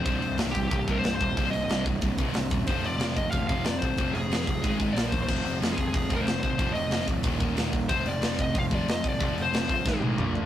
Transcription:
<<
  \new Staff \with { instrumentName = "Lead electric guitar" } { \time 4/4 \key c \minor \tempo 4 = 184 c''4 r8 g'8 g'8. bes'16 c''8 c''8~ | c''8 ees''4 r2 r8 | c''8 d''4 ees''8 f''8 f''8 d''8 c''8~ | c''8 aes'2 r8 d''8 c''8 |
c''4 r8 aes'8 aes'8. bes'16 c''8 c''8~ | c''8 ees''4 r2 r8 | c''8 d''4 ees''8 f''8 d''8 ees''8 d''8~ | d''8 c''2 r4. | }
  \new Staff \with { instrumentName = "Distorted electric guitar" } { \clef bass \time 4/4 \key c \minor <c, g, c>2 <c, g, c>2 | <c, g, c>2 <c, g, c>2 | <f, c f>2 <f, c f>2 | <f, c f>2 <aes, ees aes>4 <bes, f bes>4 |
<f, c f>2 <f, c f>2 | <f, c f>2 <ees, bes, ees>4 <ees, bes, ees>4 | <f, c f>2 <f, c f>2 | <f, c f>2 <aes, ees aes>4 <bes, f bes>4 | }
  \new Staff \with { instrumentName = "Distorted electric guitar" } { \clef bass \time 4/4 \key c \minor <c, g, c>8 <c, g,>8 <c, g, c>8 <c, g,>8 <c, g,>8 <c, g, c>8 <c, g,>8 <c, g,>8 | <c, g, c>8 <c, g,>8 <c, g, c>8 <c, g,>8 <c, g,>8 <c, g, c>8 <c, g,>8 <c, g,>8 | <f, c f>8 <f, c>8 <f, c f>8 <f, c>8 <f, c>8 <f, c f>8 <f, c>8 <f, c>8 | <f, c f>8 <f, c>8 <f, c f>8 <f, c>8 <aes, ees aes>8 <aes, ees aes>8 <bes, f bes>8 <bes, f>8 |
<f, c f>8 <f, c>8 <f, c f>8 <f, c>8 <f, c>8 <f, c f>8 <f, c>8 <f, c>8 | <f, c f>8 <f, c>8 <f, c f>8 <f, c>8 <ees, bes, ees>8 <ees, bes, ees>8 <ees, bes, ees>8 <ees, bes,>8 | <f, c f>8 <f, c>8 <f, c f>8 <f, c>8 <f, c>8 <f, c f>8 <f, c>8 <f, c>8 | <f, c f>8 <f, c>8 <f, c f>8 <f, c>8 <aes, ees aes>8 <aes, ees aes>8 <bes, f bes>8 <bes, f>8 | }
  \new Staff \with { instrumentName = "Distorted electric guitar" } { \clef bass \time 4/4 \key c \minor <c, g, c>8 <c, g,>8 <c, g, c>8 <c, g,>8 <c, g,>8 <c, g, c>8 <c, g,>8 <c, g,>8 | <c, g, c>8 <c, g,>8 <c, g, c>8 <c, g,>8 <c, g,>8 <c, g, c>8 <c, g,>8 <c, g,>8 | <f, c f>8 <f, c>8 <f, c f>8 <f, c>8 <f, c>8 <f, c f>8 <f, c>8 <f, c>8 | <f, c f>8 <f, c>8 <f, c f>8 <f, c>8 <aes, ees aes>8 <aes, ees aes>8 <bes, f bes>8 <bes, f>8 |
<f, c f>8 <f, c>8 <f, c f>8 <f, c>8 <f, c>8 <f, c f>8 <f, c>8 <f, c>8 | <f, c f>8 <f, c>8 <f, c f>8 <f, c>8 <ees, bes, ees>8 <ees, bes, ees>8 <ees, bes, ees>8 <ees, bes,>8 | <f, c f>8 <f, c>8 <f, c f>8 <f, c>8 <f, c>8 <f, c f>8 <f, c>8 <f, c>8 | <f, c f>8 <f, c>8 <f, c f>8 <f, c>8 <aes, ees aes>8 <aes, ees aes>8 <bes, f bes>8 <bes, f>8 | }
  \new Staff \with { instrumentName = "Picked electric bass" } { \clef bass \time 4/4 \key c \minor c,,8 c,,8 c,,8 c,,8 c,,8 c,,8 c,,8 ees,,8 | c,,8 c,,8 c,,8 c,,8 c,,8 c,,8 c,,8 ees,,8 | f,,8 f,,8 f,,8 f,,8 f,,8 f,,8 f,,8 aes,,8 | f,,8 f,,8 f,,8 f,,8 aes,,8 aes,,8 bes,,8 ees,8 |
f,,8 f,,8 f,,8 f,,8 f,,8 f,,8 f,,8 aes,,8 | f,,8 f,,8 f,,8 d,,8 ees,,8 ees,,8 ees,,8 ees,,8 | f,,8 f,,8 f,,8 f,,8 f,,8 f,,8 f,,8 aes,,8 | f,,8 f,,8 f,,8 g,,8 aes,,8 a,,8 bes,,8 d,8 | }
  \new DrumStaff \with { instrumentName = "Drums" } \drummode { \time 4/4 <hho bd>8 hho8 <hho sn>16 sn16 <hho bd>8 <hho bd>8 <hho bd>8 <hho sn>8 <hho bd>8 | <hho bd>8 hho8 <hho sn>8 <hho bd>8 <hho bd>8 <hho bd>8 <hho sn>8 <hho bd>8 | <hho bd>8 hho8 <hho sn>16 sn16 <hho bd>8 <hho bd>8 <hho bd>8 <hho sn>8 <hho bd>8 | <hho bd>8 hho8 <hho sn>16 sn16 <hho bd>8 <hho bd>8 <hho bd>8 <hho sn>8 <hho bd>8 |
<cymc bd>8 hho8 <hho sn>16 sn16 <hho bd>8 <hho bd>8 <hho bd>8 <hho sn>8 <hho bd>8 | <hho bd>8 hho8 <hho sn>16 sn16 <hho bd>8 <hho bd>8 <hho bd>8 <hho sn>8 <hho bd>8 | <hho bd>8 hho8 <hho sn>16 sn16 <hho bd>8 <hho bd>8 <hho bd>8 <hho sn>8 <hho bd>8 | <hho bd>8 hho8 <hho sn>16 sn16 <hho bd>8 <bd sn>8 tommh8 toml8 tomfh8 | }
>>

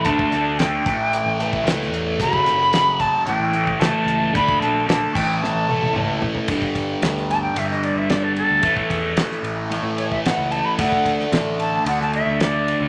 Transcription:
<<
  \new Staff \with { instrumentName = "Flute" } { \time 4/4 \key a \mixolydian \tempo 4 = 112 a''4 g''2~ g''8 r8 | b''4. a''8 g''4 a''4 | b''8 a''8 a''8 g''8 a''4. r8 | r4. a''16 g''16 e''16 dis''16 d''16 e''16 d''16 a'16 a'8~ |
a'8 r2 cis''16 e''16 fis''8 a''16 b''16 | fis''4 r8 a''8 fis''16 a''16 e''8 d''4 | }
  \new Staff \with { instrumentName = "Distorted electric guitar" } { \clef bass \time 4/4 \key a \mixolydian <d a d'>8 <a d'>8 <d a d'>8 <a, e a>4 <e a>8 <a, e a>4 | <fis, cis fis>8 <cis fis>8 <fis, cis fis>8 <cis fis>8 <a, e a>8 <e a>8 <a, e a>4 | <d a d'>8 <a d'>8 <d a d'>8 <a, e a>4 <e a>8 <a, e a>4 | <g, d g>2 <g, d g>2 |
<a, e a>2 <a, e a>2 | <d a d'>2 <d a d'>2 | }
  \new Staff \with { instrumentName = "Picked electric bass" } { \clef bass \time 4/4 \key a \mixolydian d,8 d,4 a,,8. a,,8. cis,8 e,8 | fis,,8 fis,,4. a,,16 a,,8. cis,16 r16 cis,8 | d,8 bes,,4 a,,8. a,,8. cis,8 a,,16 r16 | g,,4 d,4 g,,8. g,,4 d,16 |
a,,8 e,8 r8 a,,8. a,4 cis,8 r16 | d,4 a,,4 d,8. d,4 cis,16 | }
  \new DrumStaff \with { instrumentName = "Drums" } \drummode { \time 4/4 <hh bd>16 bd16 <hh sn>8 <hh sn>8 <hh bd sn>8 hh8 hh16 bd16 <hh sn>16 sn16 hh8 | <hh bd>16 bd16 <hh sn>8 <hh sn>8 <hh bd>8 hh8 hh16 bd16 <hh sn>8 hh8 | <hh bd>16 bd16 hh8 <hh sn>8 <cymc bd sn>8 sn8 tommh16 tommh16 toml8 tomfh16 tomfh16 | <bd cymr>16 bd16 <bd cymr>8 <cymr sn>16 sn16 <cymr sn>8 cymr16 sn16 cymr8 <cymr sn>8 cymr8 |
<bd cymr>16 bd16 <bd cymr>8 <cymr sn>16 sn16 cymr8 cymr8 cymr16 bd16 <cymr sn>8 cymr8 | <bd cymr>16 bd16 <bd cymr>16 sn16 <cymr sn>8 cymr8 cymr16 sn16 cymr8 <cymr sn>8 cymr8 | }
>>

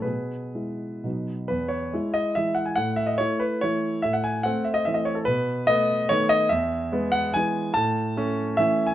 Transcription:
<<
  \new Staff \with { instrumentName = "Grand piano" } { \time 3/4 \key e \major \tempo 4 = 143 <gis' b'>2~ <gis' b'>8 r8 | b'8 cis''4 dis''8 e''8 fis''16 gis''16 | fis''8 e''16 dis''16 cis''8 b'8 cis''4 | e''16 fis''16 gis''8 fis''8 e''16 dis''16 e''16 dis''16 cis''16 a'16 |
b'4 dis''4 cis''8 dis''8 | e''4. fis''8 gis''4 | a''2 e''8. gis''16 | }
  \new Staff \with { instrumentName = "Grand piano" } { \time 3/4 \key e \major b,4 <gis e'>4 <b, fis b dis'>4 | e,4 <gis e'>4 <e gis e'>4 | a,4 <a e'>4 <e a e'>4 | a,4 <a c'>4 <e a c'>4 |
b,4 <a b>4 <dis a b>4 | e,4 <gis b>4 <e gis b>4 | a,4 <a cis'>4 <e a cis'>4 | }
>>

